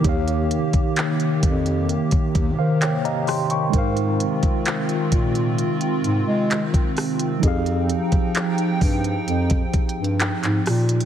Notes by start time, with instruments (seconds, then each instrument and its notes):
Already playing: analog synth pad D#3 A#3 G4
0.01 bass clarinet D#2, analog synth pad C3, tine electric piano D#3 D#4, kick, closed hi-hat
0.05 tine electric piano G4 C#5
0.09 tine electric piano F5
0.28 closed hi-hat
0.51 closed hi-hat
0.73 kick, closed hi-hat
0.96 clap, closed hi-hat
1.20 closed hi-hat
1.43 bass clarinet F2, kick, closed hi-hat
1.66 closed hi-hat
1.89 closed hi-hat
2.11 kick, closed hi-hat
2.35 bass clarinet D#2, kick, closed hi-hat
2.58 bass clarinet D#3, tine electric piano C5 F5
2.82 tine electric piano C#5 G5, clap, closed hi-hat
3.05 tine electric piano D#5 F5 A#5, closed hi-hat
3.27 tine electric piano G5 C6, cross-stick, open hi-hat
3.50 tine electric piano G5 C#6, closed hi-hat
3.70 bass clarinet G#2, analog synth pad D#3 C4 F4, tine electric piano G#3 D#4, kick, closed hi-hat
3.74 tine electric piano A#4 C5
3.78 tine electric piano F5
3.97 closed hi-hat
4.20 closed hi-hat
4.43 kick, closed hi-hat
4.66 clap, closed hi-hat
4.89 closed hi-hat
5.12 bass clarinet A#2, kick, closed hi-hat
5.35 closed hi-hat
5.58 closed hi-hat
5.81 closed hi-hat
6.04 bass clarinet G#2, closed hi-hat
6.27 bass clarinet G#3
6.51 clap, closed hi-hat
6.74 kick, closed hi-hat
6.97 cross-stick, open hi-hat
7.19 closed hi-hat
7.39 bass clarinet F2, tine electric piano F3 D#4, analog synth pad F3 G5, kick, closed hi-hat
7.43 analog synth pad D#4, tine electric piano G4 G#4
7.48 tine electric piano F5
7.66 closed hi-hat
7.89 closed hi-hat
8.12 bass clarinet G2, kick, closed hi-hat
8.35 clap, closed hi-hat
8.58 closed hi-hat
8.81 bass clarinet G2, kick, open hi-hat
9.04 closed hi-hat
9.28 bass clarinet F2, closed hi-hat
9.50 kick, closed hi-hat
9.74 bass clarinet G2, kick, closed hi-hat
9.89 closed hi-hat
9.97 bass clarinet G2
10.04 closed hi-hat
10.20 clap, closed hi-hat
10.43 bass clarinet G#2, clap, closed hi-hat
10.66 bass clarinet A#2, cross-stick, open hi-hat
10.89 closed hi-hat
11.00 closed hi-hat